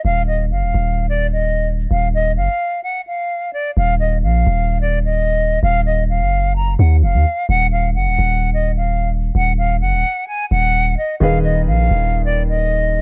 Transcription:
<<
  \new Staff \with { instrumentName = "Flute" } { \time 4/4 \key ees \minor \tempo 4 = 129 f''8 ees''8 f''4~ f''16 d''8 ees''4~ ees''16 | f''8 ees''8 f''4 ges''8 f''4 d''8 | f''8 ees''8 f''4~ f''16 d''8 ees''4~ ees''16 | f''8 ees''8 f''4 bes''8 ges''8 f''4 |
ges''8 f''8 ges''4~ ges''16 ees''8 f''4~ f''16 | ges''8 f''8 ges''4 aes''8 ges''4 ees''8 | f''8 ees''8 f''4~ f''16 d''8 ees''4~ ees''16 | }
  \new Staff \with { instrumentName = "Felt piano" } { \time 4/4 \key ees \minor r1 | r1 | r1 | r1 |
r1 | r1 | <ees ees' aes' ces''>1 | }
  \new Staff \with { instrumentName = "808-style bass" } { \clef bass \time 4/4 \key ees \minor ees,,4 ges,,16 ees,,16 ees,,2~ ees,,8 | ees,,4 ges,,16 r2 r8. | ees,,4 bes,,8 ees,,2~ ees,,8 | ees,,4~ ees,,16 ges,,4~ ges,,16 ees,8 f,,16 ees,16 r8 |
ees,,4 ges,,16 ees,,16 ees,,2~ ees,,8 | ees,,4 ges,,16 ees,,16 r4 ees,,4 r8 | ees,,4 bes,,8 ees,,2~ ees,,8 | }
>>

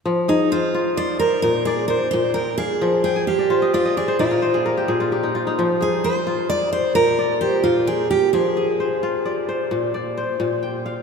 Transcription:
<<
  \new Staff \with { instrumentName = "Kora" } { \time 12/8 \key f \dorian \tempo 4. = 87 r8 aes'8 c''4 d''8 c''4 d''8 c''4 g''8 f''8~ | f''8 g''16 aes''16 f''16 d''16 c''16 ees''16 d''16 ees''16 d''16 c''16 d''16 bes'16 c''16 aes'16 bes'16 g'16 aes'16 f'16 g'16 ees'16 f'16 ees'16~ | ees'16 r16 aes'8 c''4 d''8 c''4 d''8 c''4 g''8 f''8~ | f''8 aes'8 c''4 d''8 c''4 d''8 c''4 g''8 f''8 | }
  \new Staff \with { instrumentName = "Kora" } { \clef bass \time 12/8 \key f \dorian f4 r8 f'4 r8 bes,4 r8 bes,4 r8 | f4 r8 f'4 r8 bes,4 r8 bes,4 r8 | f4 r8 f'4 r8 bes,4 r8 bes,4 r8 | f4 r8 f'4 r8 bes,4 r8 bes,4 r8 | }
  \new Staff \with { instrumentName = "Steel-string acoustic guitar" } { \time 12/8 \key f \dorian r8 ees'8 f'4 c''8 bes'8 bes'8 aes'8 bes'8 c''8 bes'8 aes'8~ | aes'8 aes'8 g'4 f'8 aes'8 f'4. r4. | r8 aes'8 c''4 d''8 c''8 bes'4 g'8 f'8 aes'8 g'8 | aes'2. r2. | }
>>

